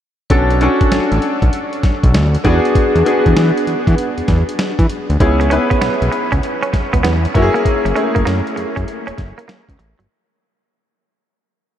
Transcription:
0.30 0.68 B1 loud
0.30 0.57 C#4 medium
0.30 0.57 D4 medium
0.30 0.57 F#4 medium
0.30 0.58 A4 medium
0.30 kick loud
0.30 closed hi-hat medium
0.50 closed hi-hat soft
0.61 1.65 C#4 medium
0.61 1.65 D4 medium
0.61 1.65 F#4 medium
0.61 1.65 A4 medium
0.61 closed hi-hat medium
0.81 kick medium
0.81 closed hi-hat soft
0.91 1.00 A1 medium
0.91 snare loud
0.91 closed hi-hat medium
1.12 1.20 A1 medium
1.12 closed hi-hat soft
1.22 closed hi-hat medium
1.42 1.50 B1 medium
1.42 kick medium
1.42 closed hi-hat medium
1.53 closed hi-hat medium
1.73 closed hi-hat soft
1.83 1.92 B1 soft
1.83 kick medium
1.83 snare medium
1.83 closed hi-hat medium
2.03 2.16 B1 medium
2.03 kick loud
2.03 closed hi-hat medium
2.14 2.37 D2 loud
2.14 snare loud
2.14 closed hi-hat medium
2.35 closed hi-hat medium
2.44 2.60 E2 loud
2.44 2.98 B3 medium
2.44 2.98 D4 medium
2.44 2.99 F#4 medium
2.44 2.99 G#4 loud
2.44 kick medium
2.44 closed hi-hat medium
2.65 closed hi-hat soft
2.75 kick loud
2.75 closed hi-hat medium
2.95 3.03 E2 medium
2.95 closed hi-hat medium
3.05 4.09 B3 medium
3.05 4.09 D4 medium
3.05 4.10 F#4 medium
3.05 4.10 G#4 medium
3.05 closed hi-hat medium
3.26 3.34 E2 medium
3.26 kick medium
3.26 closed hi-hat soft
3.36 3.52 E3 loud
3.36 snare loud
3.36 closed hi-hat medium
3.57 closed hi-hat medium
3.67 3.75 E3 medium
3.67 closed hi-hat medium
3.87 3.95 E3 loud
3.87 kick medium
3.87 closed hi-hat medium
3.98 closed hi-hat medium
4.18 4.22 E2 soft
4.18 closed hi-hat soft
4.28 4.44 E2 medium
4.28 kick medium
4.28 snare medium
4.28 closed hi-hat medium
4.49 closed hi-hat medium
4.59 snare loud
4.59 closed hi-hat medium
4.79 4.87 E3 medium
4.79 kick medium
4.79 closed hi-hat medium
4.89 closed hi-hat medium
5.10 5.17 D2 medium
5.10 closed hi-hat soft
5.20 5.58 C#2 loud
5.20 5.47 B3 medium
5.20 5.47 C#4 medium
5.20 5.47 E4 medium
5.20 5.48 G#4 medium
5.20 kick loud
5.20 closed hi-hat medium
5.40 muted clean electric guitar stroke soft
5.40 closed hi-hat soft
5.50 6.55 B3 medium
5.50 5.63 C#4 medium
5.50 6.55 C#4 medium
5.50 6.55 E4 medium
5.50 6.55 B4 medium
5.50 closed hi-hat medium
5.70 5.77 B3 medium
5.70 kick medium
5.70 closed hi-hat soft
5.81 5.90 B1 medium
5.81 5.94 B3 medium
5.81 snare loud
5.81 closed hi-hat medium
6.02 6.09 B1 medium
6.02 closed hi-hat medium
6.12 muted clean electric guitar stroke soft
6.12 closed hi-hat medium
6.32 6.40 C#2 medium
6.32 6.39 C#4 medium
6.32 kick medium
6.32 closed hi-hat medium
6.43 closed hi-hat medium
6.63 6.69 C#4 medium
6.63 closed hi-hat soft
6.73 6.81 C#2 soft
6.73 muted clean electric guitar stroke soft
6.73 kick medium
6.73 snare medium
6.73 closed hi-hat medium
6.93 7.01 C#2 medium
6.93 7.00 B3 medium
6.93 kick loud
6.93 closed hi-hat medium
7.03 7.27 E2 loud
7.03 7.16 B3 medium
7.03 snare loud
7.03 closed hi-hat medium
7.25 closed hi-hat medium
7.34 7.50 F#1 loud
7.34 7.88 A#3 medium
7.34 7.88 C#4 medium
7.34 7.89 E4 medium
7.34 7.43 F#4 medium
7.34 muted clean electric guitar stroke soft
7.34 kick loud
7.34 closed hi-hat medium
7.42 7.92 G#4 loud
7.54 7.61 A#3 medium
7.54 closed hi-hat soft
7.65 kick loud
7.65 closed hi-hat medium
7.85 7.93 F#1 medium
7.85 muted clean electric guitar stroke soft
7.85 closed hi-hat medium
7.96 8.04 A3 medium
7.96 8.08 C#4 medium
7.96 9.00 C#4 medium
7.96 9.00 E4 medium
7.96 9.00 G#4 medium
7.96 closed hi-hat medium
8.02 9.03 A#3 medium
8.15 8.24 F#1 medium
8.15 8.22 A#3 medium
8.15 kick medium
8.15 closed hi-hat soft
8.25 8.42 F#2 loud
8.25 8.39 A#3 medium
8.25 snare loud
8.25 closed hi-hat medium
8.47 closed hi-hat medium
8.56 8.65 F#2 soft
8.56 muted clean electric guitar stroke soft
8.56 closed hi-hat medium
8.76 8.85 F#2 loud
8.76 8.83 C#4 medium
8.76 kick medium
8.76 closed hi-hat medium
8.88 closed hi-hat medium
9.07 9.12 F#1 soft
9.07 9.14 C#4 medium
9.07 closed hi-hat soft
9.18 9.33 F#1 medium
9.18 muted clean electric guitar stroke soft
9.18 kick medium
9.18 snare medium
9.18 closed hi-hat medium
9.38 9.45 A#3 medium
9.38 closed hi-hat medium
9.48 9.61 A#3 medium
9.48 snare loud
9.48 closed hi-hat medium
9.69 9.77 C#2 medium
9.69 kick medium
9.69 closed hi-hat medium
9.79 9.95 A1 medium
9.79 muted clean electric guitar stroke soft
9.79 closed hi-hat medium
9.99 10.07 G1 medium
9.99 10.06 F#3 medium
9.99 closed hi-hat soft

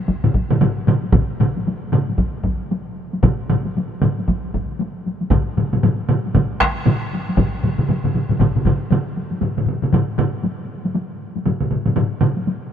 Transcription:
0.08 taiko medium
0.08 taiko high medium
0.24 taiko low-mid medium
0.24 taiko mid medium
0.34 taiko medium
0.34 taiko high medium
0.51 taiko low-mid medium
0.51 taiko mid medium
0.51 taiko high soft
0.61 taiko low-mid loud
0.61 taiko mid medium
0.61 taiko high medium
0.87 taiko low-mid loud
0.87 taiko mid loud
0.87 taiko high medium
1.03 taiko high medium
1.13 taiko loud
1.13 taiko low-mid medium
1.13 taiko mid medium
1.13 taiko high medium
1.40 taiko low-mid medium
1.40 taiko mid medium
1.40 taiko high medium
1.56 taiko high medium
1.67 taiko high medium
1.93 taiko low-mid medium
1.93 taiko mid medium
1.93 taiko high medium
2.09 taiko high medium
2.18 taiko medium
2.18 taiko high medium
2.44 taiko medium
2.44 taiko high medium
2.71 taiko high medium
3.13 taiko high medium
3.23 taiko medium
3.23 taiko low-mid medium
3.23 taiko mid medium
3.23 taiko high medium
3.50 taiko low-mid medium
3.50 taiko mid medium
3.50 taiko high medium
3.66 taiko high medium
3.77 taiko high medium
4.02 taiko low-mid medium
4.02 taiko mid medium
4.02 taiko high medium
4.19 taiko high medium
4.28 taiko medium
4.28 taiko high medium
4.54 taiko medium
4.54 taiko high medium
4.79 taiko high medium
5.06 taiko high medium
5.21 taiko high medium
5.31 taiko medium
5.31 taiko low-mid medium
5.31 taiko mid loud
5.31 taiko high medium
5.57 taiko low-mid medium
5.57 taiko mid medium
5.57 taiko high medium
5.73 taiko low-mid medium
5.73 taiko mid medium
5.73 taiko high medium
5.83 taiko low-mid loud
5.83 taiko mid medium
5.83 taiko high medium
6.09 taiko low-mid medium
6.09 taiko mid medium
6.09 taiko high medium
6.26 taiko high medium
6.35 taiko medium
6.35 taiko low-mid medium
6.35 taiko mid loud
6.35 taiko high medium
6.60 taiko rim medium
6.60 taiko medium
6.60 taiko high medium
6.86 taiko low-mid medium
6.86 taiko mid medium
6.86 taiko high medium
7.13 taiko high medium
7.29 taiko high medium
7.37 taiko medium
7.37 taiko low-mid medium
7.37 taiko mid medium
7.37 taiko high medium
7.63 taiko low-mid medium
7.63 taiko mid medium
7.63 taiko high medium
7.78 taiko low-mid medium
7.78 taiko mid medium
7.89 taiko low-mid medium
7.89 taiko mid medium
7.89 taiko high medium
8.04 taiko low-mid medium
8.04 taiko mid medium
8.14 taiko low-mid medium
8.14 taiko mid medium
8.14 taiko high soft
8.29 taiko low-mid medium
8.29 taiko mid medium
8.29 taiko high medium
8.39 taiko medium
8.39 taiko low-mid medium
8.39 taiko mid loud
8.39 taiko high medium
8.55 taiko low-mid medium
8.55 taiko mid medium
8.65 taiko medium
8.65 taiko low-mid medium
8.65 taiko mid medium
8.65 taiko high medium
8.91 taiko low-mid medium
8.91 taiko mid medium
8.91 taiko high medium
9.17 taiko high soft
9.32 taiko high medium
9.41 taiko low-mid medium
9.41 taiko mid medium
9.41 taiko high medium
9.57 taiko low-mid medium
9.57 taiko mid medium
9.66 taiko low-mid medium
9.66 taiko mid medium
9.82 taiko low-mid medium
9.82 taiko mid medium
9.93 taiko low-mid loud
9.93 taiko mid medium
9.93 taiko high medium
10.18 taiko low-mid medium
10.18 taiko mid medium
10.43 taiko high medium
10.85 taiko high medium
10.95 taiko high medium
11.36 taiko high medium
11.46 taiko low-mid medium
11.46 taiko mid medium
11.46 taiko high medium
11.61 taiko low-mid medium
11.61 taiko mid medium
11.71 taiko low-mid medium
11.71 taiko mid medium
11.86 taiko low-mid medium
11.86 taiko mid medium
11.86 taiko high medium
11.96 taiko low-mid loud
11.96 taiko mid medium
11.96 taiko high medium
12.21 taiko low-mid loud
12.21 taiko mid loud
12.37 taiko high medium
12.48 taiko high medium

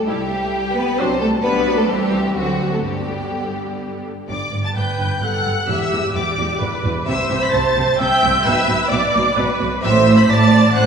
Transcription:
0.06 0.46 C2 medium
0.06 0.29 G3 medium
0.06 0.76 G3 medium
0.06 0.29 E4 medium
0.06 0.74 G4 medium
0.06 0.52 E5 medium
0.53 0.99 G5 medium
0.75 0.99 B3 medium
0.75 0.99 B4 loud
0.98 1.36 C2 medium
0.98 1.20 F#3 medium
0.98 1.21 C4 medium
0.98 1.20 D4 medium
0.98 1.21 C5 loud
0.98 1.43 A5 medium
1.20 1.28 A3 medium
1.20 1.28 A4 loud
1.43 1.87 B1 medium
1.43 1.65 G3 medium
1.43 1.77 B3 medium
1.43 1.87 D4 medium
1.43 1.77 B4 loud
1.43 1.90 D5 medium
1.67 1.90 F#3 medium
1.77 1.89 A3 medium
1.77 1.90 A4 medium
1.88 2.37 C2 medium
1.88 2.36 E3 medium
1.88 2.35 G3 medium
1.88 2.35 C4 medium
1.88 2.36 G4 loud
1.88 2.37 E5 medium
2.36 2.84 D2 medium
2.36 2.84 D3 medium
2.36 2.72 F#3 medium
2.36 2.84 C4 medium
2.36 2.72 F#4 medium
2.36 2.85 F#5 medium
2.71 2.76 A3 medium
2.71 2.85 A4 medium
2.84 4.09 G1 medium
2.84 4.07 D3 medium
2.84 4.03 G3 medium
2.84 4.07 B3 soft
2.84 4.03 G4 medium
2.84 4.04 D5 medium
4.29 4.37 G1 medium
4.29 4.37 G2 medium
4.29 4.62 D5 medium
4.29 4.62 D6 loud
4.52 4.61 G1 medium
4.52 4.60 G2 medium
4.64 4.69 A5 medium
4.64 4.69 A6 loud
4.75 4.83 G1 medium
4.75 4.83 G2 medium
4.75 5.20 B4 medium
4.75 5.22 G5 medium
4.75 5.22 G6 loud
4.98 5.07 G1 medium
4.98 5.06 G2 medium
5.21 5.30 G1 medium
5.21 5.29 G2 medium
5.21 5.68 A4 medium
5.21 5.68 F#5 loud
5.21 5.69 F#6 loud
5.45 5.53 G1 medium
5.45 5.53 G2 medium
5.69 5.77 E1 medium
5.69 5.77 E2 medium
5.69 6.59 G4 medium
5.69 6.14 E5 medium
5.69 6.15 E6 loud
5.92 6.00 E1 medium
5.92 6.00 E2 medium
6.15 6.23 E1 medium
6.15 6.23 E2 medium
6.15 6.83 D5 medium
6.15 6.83 D6 loud
6.38 6.46 E1 medium
6.38 6.46 E2 medium
6.61 6.69 E1 medium
6.61 6.69 E2 medium
6.61 7.08 B4 medium
6.84 6.92 E1 medium
6.84 6.92 E2 medium
7.07 7.15 C2 medium
7.07 7.15 C3 medium
7.07 7.98 C5 loud
7.07 7.39 E5 loud
7.07 7.40 E6 loud
7.30 7.38 C2 medium
7.30 7.38 C3 medium
7.41 7.46 B5 loud
7.41 7.54 B6 loud
7.52 7.62 C2 medium
7.52 7.61 C3 medium
7.52 7.98 A5 medium
7.52 8.00 A6 loud
7.76 7.85 C2 medium
7.76 7.84 C3 medium
7.99 8.08 C2 medium
7.99 8.07 C3 medium
7.99 8.46 E5 loud
7.99 8.45 G5 loud
7.99 8.45 G6 loud
8.22 8.32 C2 loud
8.22 8.30 C3 medium
8.44 8.55 B1 loud
8.44 8.53 B2 loud
8.44 8.91 B4 loud
8.44 8.90 E5 loud
8.44 8.91 E6 loud
8.68 8.78 B1 medium
8.68 8.76 B2 medium
8.90 9.00 B1 medium
8.90 8.99 B2 medium
8.90 9.58 D5 medium
8.90 9.37 D5 loud
8.90 9.61 D6 loud
9.14 9.22 B1 loud
9.14 9.22 B2 loud
9.37 9.45 B1 loud
9.37 9.45 B2 loud
9.37 9.83 B4 loud
9.60 9.68 B1 loud
9.60 9.68 B2 medium
9.82 10.23 A1 loud
9.82 10.23 A2 loud
9.82 10.28 C5 loud
9.82 10.15 E5 loud
9.82 10.15 E6 loud
10.16 10.21 B5 loud
10.16 10.29 B6 loud
10.28 10.69 A1 loud
10.28 10.69 A2 loud
10.28 10.75 D5 loud
10.28 10.73 A5 loud
10.28 10.75 A6 loud
10.73 10.86 A1 loud
10.73 10.86 A2 loud
10.73 10.86 C5 loud
10.73 10.86 F#5 loud
10.73 10.86 F#6 loud

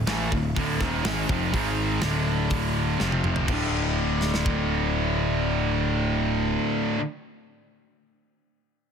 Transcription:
0.07 0.29 A1 loud
0.07 0.31 A2 loud
0.07 0.31 E3 loud
0.07 0.31 A3 loud
0.07 snare loud
0.07 open hi-hat medium
0.32 0.54 D1 medium
0.32 0.51 D2 medium
0.32 0.51 A2 medium
0.32 kick medium
0.56 0.79 D1 loud
0.56 0.80 D2 medium
0.56 0.80 A2 loud
0.56 0.80 D3 loud
0.56 kick loud
0.56 open hi-hat medium
0.81 1.03 D#1 loud
0.81 1.05 D#2 loud
0.81 1.05 A#2 medium
0.81 1.05 D#3 loud
0.81 kick loud
0.81 snare soft
1.05 1.27 G#1 loud
1.05 1.29 G#2 loud
1.05 1.29 D#3 loud
1.05 1.29 G#3 loud
1.05 snare loud
1.05 open hi-hat medium
1.29 1.51 F1 medium
1.29 1.52 F2 medium
1.29 1.52 C3 loud
1.29 1.53 F3 loud
1.29 kick loud
1.52 1.99 G#1 medium
1.52 2.00 G#2 loud
1.52 2.01 D#3 medium
1.52 2.01 G#3 medium
1.52 kick loud
1.52 open hi-hat medium
2.02 2.96 D1 loud
2.02 2.98 D2 medium
2.02 2.98 A2 loud
2.02 2.99 D3 loud
2.02 snare loud
2.02 open hi-hat medium
2.50 kick loud
2.50 open hi-hat medium
2.98 3.45 F1 medium
2.98 3.46 F2 loud
2.98 3.47 C3 loud
2.98 3.48 F3 loud
2.98 snare medium
3.12 high tom medium
3.24 mid tom loud
3.36 floor tom loud
3.46 6.56 D1 loud
3.46 6.96 D2 medium
3.46 6.99 A2 loud
3.46 kick loud
3.46 crash medium
3.50 7.00 D3 loud
4.21 snare medium
4.34 snare medium
4.46 kick loud

